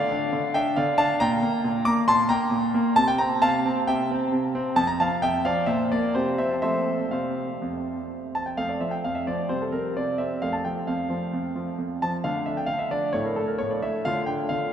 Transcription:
grand piano
Already playing: D5 F5
0.10 D4
0.33 D3
0.54 D4 E5 G5
0.76 D3 D5 F5
0.98 D4 F5 A5
1.20 A#2 G5 A#5
1.42 A#3
1.64 A#2
1.85 A#3 A#5 D6
2.08 A#2 A5 C6
2.29 A#3 G5 A#5
2.51 A#2
2.74 A#3
2.96 C3 A5
3.08 G5
3.18 C4 G5 A#5
3.42 C3 F5 A5
3.65 C4
3.87 C3 E5 G5
4.11 C4
4.32 C3
4.55 C4
4.76 F2 A5
4.87 A#5
5.00 F3 F5 A5
5.22 F2 E5 G5
5.45 F3 D5 F5
5.66 A#2 C5 E5
5.92 A#3 A#4 D5
6.15 C3 G4 C5
6.38 C4 C5 E5
6.62 F3 A3 C4 C5 E5
7.11 C3 C5 F5
7.62 F2
8.35 A5
8.46 G5
8.57 F2 A3 C4 F5
8.69 D5
8.81 F3 E5
8.91 G5
9.04 F2 F5
9.15 E5
9.27 F3 D5
9.49 C3 G3 C4 C5
9.62 A4
9.72 C4 A#4
9.97 C3 D5
10.18 C4 E5
10.42 F2 A3 C4 F5
10.53 A5
10.65 F3 G5
10.87 F2 F5
11.10 F3
11.33 F2
11.56 F3
11.78 F2
12.02 F3 A5
12.24 D3 A3 D4 F5
12.46 D4 E5
12.57 G5
12.66 D3 F5
12.79 E5
12.91 D4 D5
13.13 A2 A3 E4 C#5
13.25 A#4
13.36 A3 A4
13.47 A#4
13.58 A2 C#5
13.71 D5
13.82 A3 E5
14.05 D3 A3 F4 F5
14.26 D4 G5
14.49 D3 F5

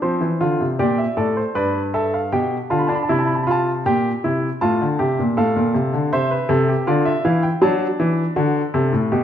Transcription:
grand piano
0.02 F3 C4 C5
0.21 E3
0.41 D3 F4
0.61 C3
0.79 A#2 G4 D5
0.98 E5
1.17 A2 A4 D5
1.37 C5
1.55 G2 B4 D5
1.94 A4 E5
2.14 F5
2.32 B2 G4 G5
2.70 D3 F4 A5
2.79 B5
2.87 D4 A5
2.95 B5
3.03 A5
3.09 C3 E4 B5
3.19 A5
3.27 B5
3.35 A5
3.43 F4 B5
3.51 A5
3.86 A#2 G4 G5
4.24 C3 E4
4.61 A2 F4 A5
4.81 D3
4.99 C3 G4
5.19 A#2
5.37 A2 A4 F5
5.56 A#2
5.74 C3
5.94 D3
6.13 C3 C5 E5
6.31 B4
6.49 C3 A4
6.68 G4
6.87 D3 F4 D5
7.05 E5
7.25 E3 E4 F5
7.43 G5
7.62 F#3 D4 A5
8.00 E3
8.36 D3 F#4
8.74 C3 A4
8.93 A2
9.12 B2 G4

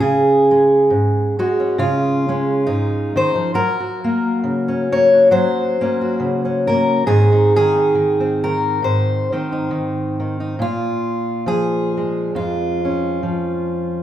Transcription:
steel-string acoustic guitar
Already playing: C#4
0.00 C#3 G#4
0.51 G#3
0.90 G#2
1.39 G#3 F#4
1.60 C#4
1.78 C#3 F4
2.29 G#3 C#4
2.67 G#2 D#4
3.16 D#3 C5
3.35 F3
3.54 F#3 A#4
3.80 F#4
4.04 A#3
4.44 C#3
4.68 C#4
4.92 A#3 C#5
5.13 F#4
5.31 F#3 C5
5.81 A#3 C#4
6.01 F#4
6.20 C#3
6.45 C#4
6.67 A#3 A#4
7.06 G#2 D#3 C4 D#4 G#4
7.32 D#4
7.56 D#3 G#4
7.76 D#4
7.95 D#3
8.20 C4
8.44 D#3 A#4
8.82 G#2 C5
9.32 D#3 C4
9.52 D#4
9.71 D#3
10.20 D#3
10.40 D#4
10.59 A#2 F4
11.46 F3 G#4
11.97 G#3
12.35 F2 F4
12.85 C#4
13.23 F3

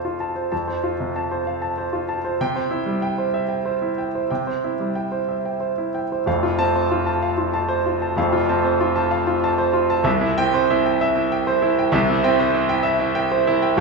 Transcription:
grand piano
Already playing: F2 C3 F4 C5 F5 A5
0.05 F4
0.20 A5
0.35 C5
0.52 F2 A5
0.68 C5
0.84 F4
1.00 C3
1.16 A5
1.32 C5
1.47 F5
1.62 A5
1.78 C5
1.93 F4
2.09 A5
2.25 C5
2.41 C3 G5
2.56 C5
2.71 E4
2.86 G3
3.02 G5
3.18 C5
3.34 E5
3.49 G5
3.66 C5
3.82 E4
3.98 G5
4.15 C5
4.31 C3 G5
4.47 C5
4.64 E4
4.80 G3
4.95 G5
5.12 C5
5.28 E5
5.45 G5
5.60 C5
5.78 E4
5.95 G5
6.12 C5
6.26 F1 F2 F5
6.43 F4
6.59 C4 A5
6.75 C5
6.91 F4
7.06 A5
7.23 F5
7.38 F4
7.54 A5
7.69 C5
7.86 F4
8.02 A5
8.16 F1 F2 F5
8.33 F4
8.49 C4 A5
8.64 C5
8.81 F4
8.96 A5
9.11 F5
9.27 F4
9.44 A5
9.58 C5
9.73 F4
9.90 A5
10.04 C2 C3 E5
10.21 E4
10.38 C4 G5
10.54 C5
10.70 E4
10.86 G5
11.01 E5
11.16 E4
11.32 G5
11.47 C5
11.62 E4
11.79 G5
11.92 C2 C3 E5
12.10 E4
12.24 C4 G5
12.39 C5
12.54 E4
12.69 G5
12.83 E5
12.99 E4
13.15 G5
13.32 C5
13.47 E4
13.62 G5
13.77 F1

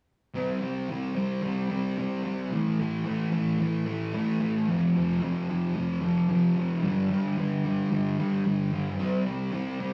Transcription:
distorted electric guitar
0.34 C3 G3 C4
0.61 G3 C4
0.89 C3 G3 C4
1.15 G3 C4
1.42 C3 G3 C4
1.70 G3 C4
1.98 C3 G3 C4
2.24 G3 C4
2.51 A2 E3 A3
2.79 E3 A3
3.05 A2 E3 A3
3.31 E3 A3
3.59 A2 E3 A3
3.86 E3 A3
4.14 A2 E3 A3
4.40 E3 A3
4.67 F2 C3 F3
4.96 C3 F3
5.22 F2 C3 F3
5.49 C3 F3
5.76 F2 C3 F3
6.01 C3 F3
6.29 F2 C3 F3
6.56 C3 F3
6.83 G2 D3 G3
7.11 D3 G3
7.38 G2 D3 G3
7.65 D3 G3
7.91 G2 D3 G3
8.18 D3 G3
8.45 G2 D3 G3
8.72 D3 G3
8.99 C3 G3 C4
9.26 G3 C4
9.52 C3 G3 C4
9.80 G3 C4

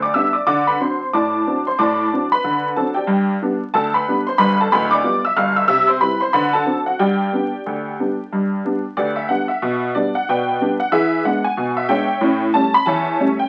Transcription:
honky-tonk piano
Already playing: D2
0.02 D5 D6
0.14 G3 B3 D4 E5 E6
0.33 D5 D6
0.47 D3 D5 D6
0.67 B4 B5
0.81 F#3 C4 D4 C5 C6
1.13 A2 D5 A5 D6
1.47 F#3 C4 D4
1.67 C5 C6
1.79 A2 D5 A5 D6
2.12 F#3 C4 D4
2.32 B4 B5
2.44 D3
2.76 F#3 C4 D4 A4 A5
2.94 G4 D5 G5
3.07 G2
3.42 G3 B3 D4
3.74 D2 A4 A5
3.94 B4 B5
4.08 G3 B3 D4
4.27 C5 C6
4.38 G1 G2 B4 B5
4.60 A4 A5
4.72 D1 D2 B4 B5
4.91 D5 D6
5.04 G3 B3 F4
5.25 E5 E6
5.37 G1 G2 F5 F6
5.56 E5 E6
5.68 C3 E5 E6
5.88 C5 C6
6.01 G3 C4 E4 B4 B5
6.20 C5 C6
6.33 D3 B4 B5
6.53 A4 A5
6.66 F#3 C4 D4
6.86 F#4 F#5
6.99 G2 G4 D5 G5
7.33 G3 B3 D4
7.66 D2
7.99 G3 B3 D4
8.33 G2
8.65 G3 B3 D4
8.97 D2 G4 B4 D5
9.16 E5
9.29 G3 B3 D4 F#5
9.48 E5
9.62 B2
9.95 G3 B3 D4 D5
10.15 F#5
10.29 B2 B4 D5 G5
10.60 G3 B3 D4
10.80 F#5
10.92 E3 G#4 B4 E5
11.25 G#3 B3 D4 F#5
11.44 G#5
11.57 B2
11.77 E5
11.89 G#3 B3 D4 C#5 E5 G5
12.21 A2 C#4
12.54 G3 A3 C#4 A5
12.74 B5
12.86 E2 C#5 E5 A5
13.19 G3 A3 C#4
13.39 G5

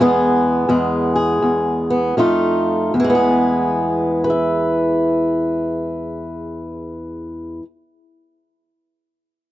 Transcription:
steel-string acoustic guitar
0.00 E2 G#3 B3 G#4
0.69 E2 G#3
1.16 G#4
1.42 E2
1.90 B3
2.17 F2 A3 D#4 F4
2.94 E2
3.00 E3
3.04 G#3
3.10 B3
3.15 G#4
4.24 B4
4.30 E5

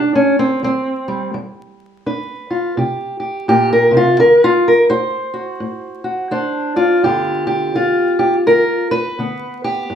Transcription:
steel-string acoustic guitar
Already playing: C3 D4
0.15 C#4
0.39 C4
0.63 G3 C4
1.08 G3
1.34 G3
2.06 D4 B4
2.50 F4
2.77 C3 G4
3.20 G4
3.48 A#2 G4
3.73 A#4
3.91 C3
3.97 F4
4.19 D3 A#4
4.44 F4
4.68 A#4
4.90 F#4 C5
5.34 F#4
5.60 A2
6.04 F#4
6.31 D4 F#4 C5
6.76 F4 D5
7.03 G2 D3 B3 F4 G4
7.47 G4
7.75 D3 F4
8.19 G4
8.46 D3 A#4
8.91 B4
9.19 D3 B3
9.64 G4
9.90 G2

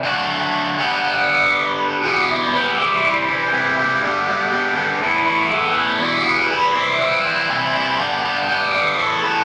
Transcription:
overdriven electric guitar
0.03 D3 F#3 A3 D4 F#4
0.78 D3 G3 B3 G4
2.03 E2 B2 E3 G3 B3 G4
2.28 E3 G3 B3 G4
2.54 E3 G3 B3 G4
2.79 C3 E3 G3 E4 G4
3.03 E3 G3 E4 G4
3.28 G3 E4 G4
3.52 C3 E3 G3 E4 G4
3.77 G3 E4 G4
4.02 G2 D3 G3 B3 D4 G4
4.27 G3 B3 D4 G4
4.51 G3 B3 D4 G4
4.75 G2 D3 G3 B3 D4 G4
5.00 A2 E3 A3 B3 E4
5.25 A3 B3 E4
5.50 A2 E3 A3 B3 E4
5.74 A3 B3 E4
5.99 E2 B2 E3 G3 B3 E4
6.24 E3 G3 B3 E4
6.49 E3 G3 B3 E4
6.73 C3 E3 G3 C4 E4
6.99 E3 G3 C4 E4
7.23 G3 C4 E4
7.48 C3 E3 G3 C4 E4
7.73 G3 C4 E4
7.98 G2 D3 G3 B3 D4 G4
8.23 G3 B3 D4 G4
8.48 G3 B3 D4 G4
8.73 G2 D3 G3 B3 D4 G4
8.97 A2 E3 A3 B3 A4
9.22 A3 B3 A4

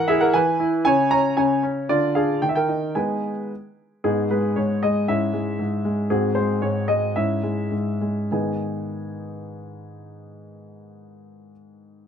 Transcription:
grand piano
Already playing: E3 A#4 F#5
0.08 E4 G#4 E5
0.21 A#4 F#5
0.34 E3 B4 G#5
0.60 E4
0.85 C#3 C#5 G#5
1.11 C#4 C#5 A#5
1.37 C#3 C#5 G#5
1.63 C#4
1.89 D3 F4 D5
2.15 D4 G#4 F5
2.42 D#3 G5
2.49 E5
2.55 A#4 G5
2.69 D#4
2.95 G#3 B3 D#4 B4 G#5
4.04 G#2 B3 D#4 G#4
4.31 G#3 B4
4.56 G#2 C#5
4.83 G#3 D#5
5.08 G#2 C#4 E4 E5
5.33 G#3
5.59 G#2
5.85 G#3
6.10 G#2 C4 F#4 G#4
6.35 G#3 C5
6.62 G#2 C#5
6.88 G#3 D#5
7.16 G#2 C#4 E4 E5
7.43 G#3
7.72 G#2
8.01 G#3
8.31 G#2 D#3 B3 D#4 G#4 B4 G#5

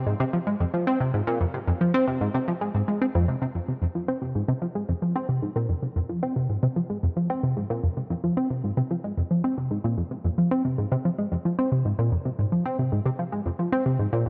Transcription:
synth arpeggio sound
0.07 G#2
0.20 C3
0.33 F3
0.47 G#3
0.60 F2
0.74 F3
0.87 C4
1.00 C3
1.14 G#2
1.27 A#2
1.41 F2
1.54 C3
1.68 F2
1.81 F3
1.94 C4
2.08 C3
2.21 G#2
2.34 C3
2.48 F3
2.61 G#3
2.75 G#2
2.88 G#3
3.02 C4
3.15 F2
3.28 C3
3.42 C3
3.55 F2
3.68 C3
3.82 F2
3.95 F3
4.08 C4
4.22 C3
4.35 G#2
4.48 C3
4.62 F3
4.75 G#3
4.89 F2
5.02 F3
5.16 C4
5.29 C3
5.42 G#2
5.56 A#2
5.69 F2
5.83 C3
5.96 F2
6.09 F3
6.23 C4
6.36 C3
6.49 G#2
6.63 C3
6.76 F3
6.90 G#3
7.03 F2
7.17 F3
7.30 C4
7.43 C3
7.57 G#2
7.70 A#2
7.83 F2
7.97 C3
8.10 F2
8.24 F3
8.37 C4
8.50 C3
8.64 G#2
8.77 C3
8.91 F3
9.04 G#3
9.17 F2
9.31 F3
9.44 C4
9.58 C3
9.71 G#2
9.84 A#2
9.98 F2
10.11 C3
10.24 F2
10.38 F3
10.51 C4
10.65 C3
10.78 G#2
10.92 C3
11.05 F3
11.18 G#3
11.32 F2
11.45 F3
11.59 C4
11.72 C3
11.85 G#2
11.99 A#2
12.12 F2
12.25 C3
12.39 G#2
12.52 F3
12.66 C4
12.79 C3
12.92 G#2
13.06 C3
13.19 F3
13.32 G#3
13.46 F2
13.59 F3
13.72 C4
13.86 C3
13.99 G#2
14.13 A#2

